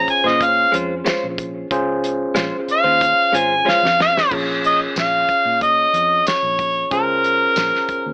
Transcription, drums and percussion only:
0.08 kick, closed hi-hat
0.27 snare
0.41 kick, closed hi-hat
0.74 closed hi-hat
1.06 snare, closed hi-hat, tambourine
1.38 kick, closed hi-hat
1.71 kick, closed hi-hat
2.04 closed hi-hat
2.36 snare, closed hi-hat, tambourine
2.68 closed hi-hat
3.01 kick, closed hi-hat
3.34 closed hi-hat
3.68 snare
3.85 snare
4.00 snare
4.17 snare
4.31 kick, crash
4.64 closed hi-hat
4.96 snare, closed hi-hat, tambourine
5.29 kick, closed hi-hat
5.61 kick, closed hi-hat
5.94 closed hi-hat
6.27 snare, closed hi-hat, tambourine
6.59 kick, closed hi-hat
6.91 kick, closed hi-hat
7.24 closed hi-hat
7.56 snare, closed hi-hat, tambourine
7.75 snare
7.89 kick, closed hi-hat

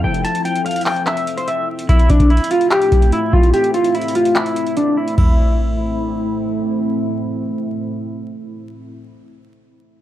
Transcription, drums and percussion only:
0.15 closed hi-hat
0.25 closed hi-hat
0.35 closed hi-hat
0.45 closed hi-hat
0.56 closed hi-hat
0.66 closed hi-hat
0.71 closed hi-hat
0.76 closed hi-hat
0.81 closed hi-hat
0.86 clap, open hi-hat
0.97 closed hi-hat
1.07 clap, closed hi-hat
1.17 closed hi-hat
1.28 closed hi-hat
1.38 closed hi-hat
1.48 closed hi-hat
1.79 closed hi-hat
1.89 kick, closed hi-hat
1.99 closed hi-hat
2.10 kick, closed hi-hat
2.20 kick, closed hi-hat
2.30 closed hi-hat
2.37 closed hi-hat
2.44 closed hi-hat
2.51 closed hi-hat
2.61 closed hi-hat
2.71 clap, closed hi-hat
2.82 closed hi-hat
2.92 kick, closed hi-hat
3.02 closed hi-hat
3.12 closed hi-hat
3.33 kick
3.43 closed hi-hat
3.54 closed hi-hat
3.64 closed hi-hat
3.74 closed hi-hat
3.84 closed hi-hat
3.95 closed hi-hat
4.02 closed hi-hat
4.08 closed hi-hat
4.15 closed hi-hat
4.25 closed hi-hat
4.36 clap, closed hi-hat
4.46 closed hi-hat
4.56 closed hi-hat
4.67 closed hi-hat
4.77 closed hi-hat
5.08 closed hi-hat
5.18 kick, floor tom, crash

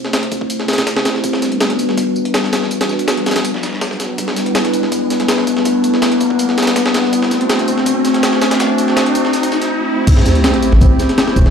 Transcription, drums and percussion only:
0.05 snare
0.13 snare, closed hi-hat, tambourine
0.23 closed hi-hat
0.32 kick, closed hi-hat, tambourine
0.41 kick
0.50 closed hi-hat, tambourine
0.60 snare
0.68 snare, closed hi-hat, tambourine
0.73 snare, closed hi-hat
0.78 snare, closed hi-hat
0.87 snare, closed hi-hat, tambourine
0.96 snare
1.05 snare, closed hi-hat, tambourine
1.15 snare
1.24 kick, closed hi-hat, tambourine
1.33 snare
1.42 snare, closed hi-hat, tambourine
1.52 closed hi-hat
1.60 snare, closed hi-hat, tambourine
1.70 snare, closed hi-hat
1.79 closed hi-hat, tambourine
1.89 snare
1.97 kick, closed hi-hat, tambourine
2.16 tambourine
2.25 closed hi-hat
2.34 snare, closed hi-hat, tambourine
2.44 snare
2.53 snare, closed hi-hat, tambourine
2.62 snare
2.71 closed hi-hat, tambourine
2.81 snare, closed hi-hat
2.89 snare, tambourine
2.99 closed hi-hat
3.08 snare, closed hi-hat, tambourine
3.17 closed hi-hat
3.26 snare, closed hi-hat, tambourine
3.31 snare, closed hi-hat
3.36 snare, closed hi-hat
3.45 closed hi-hat, tambourine
3.54 snare
3.63 snare, closed hi-hat, tambourine
3.73 snare
3.81 snare, tambourine
3.91 snare
4.00 snare, closed hi-hat, tambourine
4.18 kick, closed hi-hat, tambourine
4.28 snare
4.36 snare, closed hi-hat, tambourine
4.46 closed hi-hat
4.55 snare, closed hi-hat, tambourine
4.65 snare, closed hi-hat
4.73 closed hi-hat, tambourine
4.83 snare
4.92 kick, closed hi-hat, tambourine
5.10 snare, closed hi-hat, tambourine
5.20 snare, closed hi-hat
5.28 snare, closed hi-hat, tambourine
5.38 snare
5.47 kick, closed hi-hat, tambourine
5.57 snare
5.65 kick, closed hi-hat, tambourine
5.84 closed hi-hat, tambourine
5.94 snare
6.02 snare, closed hi-hat, tambourine
6.12 closed hi-hat
6.20 kick, closed hi-hat, tambourine
6.30 kick
6.39 closed hi-hat, tambourine
6.49 snare
6.58 snare, closed hi-hat, tambourine
6.63 snare, closed hi-hat
6.67 snare, closed hi-hat
6.76 snare, closed hi-hat, tambourine
6.86 snare
6.94 snare, closed hi-hat, tambourine
7.04 snare
7.13 kick, closed hi-hat, tambourine
7.22 snare
7.31 snare, closed hi-hat, tambourine
7.41 closed hi-hat
7.50 snare, closed hi-hat, tambourine
7.59 snare, closed hi-hat
7.68 closed hi-hat, tambourine
7.78 snare
7.86 kick, closed hi-hat, tambourine
8.05 snare, closed hi-hat, tambourine
8.14 snare, closed hi-hat
8.23 snare, closed hi-hat, tambourine
8.33 snare
8.41 snare, closed hi-hat, tambourine
8.51 snare, closed hi-hat
8.60 snare, closed hi-hat, tambourine
8.78 closed hi-hat, tambourine
8.88 snare
8.97 snare, closed hi-hat, tambourine
9.06 closed hi-hat
9.15 kick, closed hi-hat, tambourine
9.25 snare
9.33 snare, closed hi-hat, tambourine
9.43 kick, closed hi-hat
9.52 snare, tambourine
9.62 snare, closed hi-hat
10.07 kick, closed hi-hat, crash, tambourine
10.17 snare
10.26 snare, closed hi-hat, tambourine
10.35 closed hi-hat
10.44 snare, closed hi-hat, tambourine
10.54 snare, closed hi-hat
10.62 closed hi-hat, tambourine
10.72 snare
10.81 kick, closed hi-hat, tambourine
10.99 snare, closed hi-hat, tambourine
11.09 snare, closed hi-hat
11.18 snare, closed hi-hat, tambourine
11.28 snare
11.36 kick, closed hi-hat, tambourine
11.46 snare

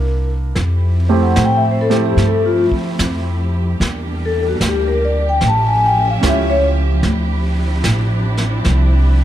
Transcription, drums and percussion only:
0.56 brush sweep, snare
1.36 snare, hi-hat pedal
1.91 snare
2.18 brush sweep, snare
2.72 kick
2.99 snare, hi-hat pedal
3.81 brush sweep, snare
4.61 snare, hi-hat pedal
5.41 brush sweep, snare
6.23 snare, hi-hat pedal
7.03 brush sweep, snare
7.84 snare, hi-hat pedal
8.37 snare
8.64 brush sweep, snare

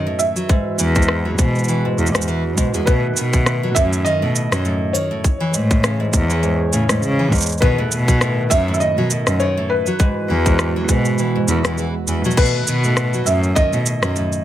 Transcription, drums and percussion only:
0.19 shaker
0.36 shaker
0.49 kick, shaker
0.79 shaker
0.95 kick, shaker
1.02 shaker
1.08 cross-stick
1.38 kick, shaker
1.55 shaker
1.59 shaker
1.64 shaker
1.68 shaker
1.98 shaker
2.06 shaker
2.15 cross-stick, shaker
2.22 shaker
2.28 shaker
2.58 kick, shaker
2.74 shaker
2.87 kick, shaker
3.17 shaker
3.33 kick, shaker
3.46 cross-stick, shaker
3.76 kick, shaker
3.93 shaker
4.06 shaker
4.35 shaker
4.52 cross-stick, shaker
4.65 shaker
4.95 shaker
5.24 kick, shaker
5.54 shaker
5.71 kick, shaker
5.84 cross-stick, shaker
6.13 kick, shaker
6.30 shaker
6.43 shaker
6.73 shaker
6.89 cross-stick, shaker
7.02 shaker
7.32 kick, shaker
7.35 shaker
7.38 shaker
7.41 shaker
7.42 shaker
7.46 shaker
7.52 shaker
7.58 shaker
7.62 kick, shaker
7.92 shaker
8.08 kick, shaker
8.21 cross-stick, shaker
8.51 kick, shaker
8.74 shaker
8.81 shaker
9.10 shaker
9.27 cross-stick, shaker
9.40 shaker
9.86 shaker
9.99 kick, shaker
10.46 kick, shaker
10.59 cross-stick, shaker
10.89 kick, shaker
11.05 shaker
11.18 shaker
11.48 shaker
11.65 cross-stick, shaker
11.78 shaker
12.08 shaker
12.24 shaker
12.31 shaker
12.37 kick, crash, shaker
12.46 shaker
12.67 shaker
12.84 shaker
12.97 cross-stick, shaker
13.13 shaker
13.26 shaker
13.43 shaker
13.56 kick, shaker
13.73 shaker
13.86 shaker
14.03 cross-stick, shaker
14.16 shaker
14.32 shaker

